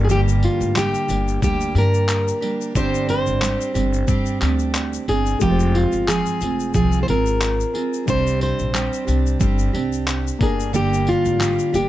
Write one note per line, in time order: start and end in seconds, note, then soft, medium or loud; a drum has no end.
0.00 0.46 G1 loud
0.00 2.37 G3 medium
0.00 2.38 D4 medium
0.00 2.39 A#4 medium
0.05 0.10 G#4 medium
0.09 0.76 G2 medium
0.09 2.75 D3 medium
0.09 0.75 G3 medium
0.09 0.75 A#3 medium
0.09 0.76 D4 medium
0.09 0.77 G4 medium
0.09 0.20 G4 loud
0.09 shaker medium
0.28 shaker medium
0.43 0.78 F4 medium
0.43 tambourine medium
0.61 0.88 G#1 medium
0.61 shaker soft
0.75 1.09 G3 medium
0.75 1.09 A#3 medium
0.75 1.09 D4 medium
0.75 1.08 G4 medium
0.75 1.43 G4 medium
0.75 clap loud
0.75 shaker medium
0.94 shaker soft
1.09 1.36 G1 medium
1.09 1.41 G3 soft
1.09 1.42 A#3 soft
1.09 1.43 D4 soft
1.09 1.42 G4 medium
1.09 tambourine medium
1.09 shaker soft
1.28 shaker soft
1.42 1.70 D2 loud
1.42 1.75 G3 medium
1.42 1.76 A#3 medium
1.42 1.75 D4 medium
1.42 1.77 G4 medium
1.42 1.74 G4 medium
1.42 kick loud
1.42 shaker medium
1.61 shaker medium
1.75 2.30 G2 medium
1.75 2.43 G3 soft
1.75 2.42 A#3 soft
1.75 2.42 D4 medium
1.75 2.41 G4 medium
1.75 2.73 A#4 loud
1.75 tambourine medium
1.94 shaker soft
2.08 clap loud
2.08 shaker medium
2.28 shaker medium
2.41 2.74 G3 soft
2.41 2.75 A#3 soft
2.41 2.75 D4 soft
2.41 2.75 G4 medium
2.41 tambourine medium
2.61 shaker soft
2.75 3.18 G1 medium
2.75 3.42 G2 medium
2.75 3.42 D3 medium
2.75 3.40 G3 medium
2.75 3.42 C4 medium
2.75 5.38 D4 medium
2.75 3.42 D4 medium
2.75 3.42 G4 medium
2.75 3.09 C5 loud
2.75 5.39 C5 medium
2.75 kick loud
2.75 shaker medium
2.95 shaker medium
3.09 5.09 C5 medium
3.09 tambourine medium
3.26 3.54 G#1 medium
3.26 shaker soft
3.41 3.75 G3 medium
3.41 3.75 C4 medium
3.41 3.74 D4 medium
3.41 3.73 G4 medium
3.41 clap loud
3.41 shaker medium
3.61 shaker medium
3.74 4.02 G1 medium
3.74 4.06 G3 soft
3.74 4.07 C4 soft
3.74 4.08 D4 soft
3.74 4.08 G4 medium
3.74 tambourine medium
3.74 shaker soft
3.94 shaker soft
4.07 4.36 G2 medium
4.07 4.41 G3 medium
4.07 4.41 C4 medium
4.07 4.41 D4 medium
4.07 4.40 G4 medium
4.07 kick loud
4.07 shaker medium
4.26 shaker soft
4.41 4.96 D2 medium
4.41 5.09 G3 medium
4.41 5.09 C4 medium
4.41 5.07 D4 medium
4.41 5.08 G4 medium
4.41 clap medium
4.41 tambourine medium
4.59 shaker soft
4.74 clap loud
4.74 shaker medium
4.93 shaker medium
5.08 5.36 G1 medium
5.08 5.41 C4 soft
5.08 5.42 D4 soft
5.08 5.42 G#4 medium
5.08 tambourine medium
5.26 shaker soft
5.39 5.84 F1 loud
5.39 6.06 F3 medium
5.39 8.03 G#3 medium
5.39 6.08 C4 medium
5.39 8.04 F4 medium
5.39 6.09 F4 medium
5.39 5.76 G4 medium
5.39 kick loud
5.39 shaker medium
5.43 5.50 A#4 medium
5.50 8.08 C5 medium
5.60 shaker medium
5.75 6.10 F4 medium
5.75 tambourine medium
5.92 6.21 G1 medium
5.92 shaker soft
6.07 6.41 F3 medium
6.07 6.42 C4 medium
6.07 6.42 F4 medium
6.07 6.74 G#4 medium
6.07 6.40 G#4 medium
6.07 clap loud
6.07 shaker medium
6.26 shaker soft
6.41 6.76 F1 medium
6.41 6.74 C4 soft
6.41 6.75 F4 soft
6.41 6.75 G#4 medium
6.41 tambourine medium
6.41 shaker soft
6.60 shaker soft
6.74 7.02 C2 medium
6.74 7.08 F3 medium
6.74 7.08 C4 medium
6.74 7.08 F4 medium
6.74 7.03 G#4 medium
6.74 7.06 G#4 medium
6.74 kick loud
6.74 shaker medium
6.92 shaker soft
7.03 7.09 C5 medium
7.07 7.63 G#1 medium
7.07 7.76 C4 soft
7.07 7.74 F4 soft
7.07 7.73 G#4 medium
7.07 8.09 A#4 medium
7.07 tambourine medium
7.26 shaker soft
7.41 clap loud
7.41 shaker medium
7.60 shaker soft
7.74 8.07 C4 soft
7.74 8.08 F4 soft
7.74 8.07 G#4 soft
7.74 tambourine medium
7.93 shaker soft
8.06 8.50 C2 medium
8.06 8.74 C3 medium
8.06 10.36 G3 medium
8.06 8.73 G3 medium
8.06 8.73 C4 medium
8.06 10.37 D4 medium
8.06 8.75 D4 medium
8.06 8.76 G4 medium
8.06 8.42 C5 loud
8.06 10.38 C5 medium
8.06 kick loud
8.06 shaker medium
8.27 shaker soft
8.41 10.42 C5 medium
8.41 tambourine medium
8.59 8.87 A#1 medium
8.59 shaker soft
8.73 9.07 G3 medium
8.73 9.08 C4 medium
8.73 9.07 D4 medium
8.73 9.06 G4 medium
8.73 clap loud
8.73 shaker medium
8.93 shaker medium
9.07 9.35 C2 medium
9.07 9.39 C4 soft
9.07 9.40 D4 soft
9.07 9.40 G4 soft
9.07 tambourine medium
9.07 shaker soft
9.26 shaker soft
9.39 9.68 G1 medium
9.39 9.73 G3 medium
9.39 9.74 C4 medium
9.39 9.73 D4 medium
9.39 9.72 G4 medium
9.39 kick loud
9.39 shaker medium
9.59 shaker soft
9.73 10.29 C2 medium
9.73 10.41 C4 medium
9.73 10.40 D4 medium
9.73 10.74 G4 medium
9.73 tambourine medium
9.93 shaker soft
10.08 clap loud
10.08 shaker medium
10.27 shaker medium
10.39 11.10 G1 medium
10.39 11.89 A#3 medium
10.39 10.73 A#3 soft
10.39 11.89 D4 medium
10.39 10.73 D4 soft
10.39 10.75 G#4 medium
10.39 kick loud
10.39 tambourine medium
10.43 11.89 A#4 medium
10.60 shaker soft
10.73 11.40 G2 medium
10.73 11.89 D3 medium
10.73 11.38 G3 medium
10.73 11.39 A#3 medium
10.73 11.40 D4 medium
10.73 11.41 G4 medium
10.73 11.09 G4 medium
10.73 shaker medium
10.94 shaker medium
11.07 11.76 F4 medium
11.07 tambourine medium
11.25 11.53 G#1 medium
11.25 shaker soft
11.39 11.73 G3 medium
11.39 11.73 A#3 medium
11.39 11.72 D4 medium
11.39 11.71 G4 medium
11.39 clap loud
11.39 shaker medium
11.59 shaker medium
11.72 11.89 G1 medium
11.72 11.89 G3 soft
11.72 11.89 A#3 soft
11.72 11.89 D4 soft
11.72 11.89 G4 medium
11.72 tambourine medium
11.72 shaker soft